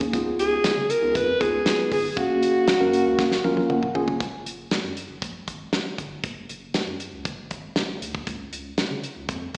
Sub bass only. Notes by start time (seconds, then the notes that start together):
0.14 C#2
0.39 C#2
0.65 C#3
0.77 C#3
1.03 C#2
1.15 F2
1.41 C#2
1.92 G1
2.17 F#1
2.43 F#1
2.68 F#2
2.81 F#2
3.06 C#2
3.19 F#1
3.44 G#1
3.70 F#1
3.95 G1
4.20 F#1
4.46 F#1
4.71 F#2
4.84 F#2
5.10 F#1
5.22 A#1
5.48 G#1
5.98 G1
6.24 F#1
6.49 F#1
6.75 F#2
6.87 F#2
7.13 C#2
7.25 F#1
7.51 G#1
7.76 F#1
8.02 D2
8.27 C#2
8.53 C#2
8.78 C#3
8.91 C#3
9.16 C#2
9.29 F2